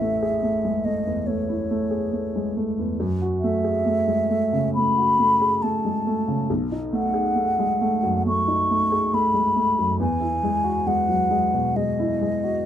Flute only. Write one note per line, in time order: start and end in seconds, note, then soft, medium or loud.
0.00 0.86 E5 medium
0.85 1.28 D#5 medium
1.27 2.54 C#5 medium
3.40 4.70 E5 medium
4.74 5.64 B5 medium
5.62 6.49 A5 medium
6.93 8.23 F#5 medium
8.28 9.16 C#6 medium
9.14 10.00 B5 medium
10.01 10.89 G#5 medium
10.87 11.78 F#5 medium
11.76 12.66 D#5 medium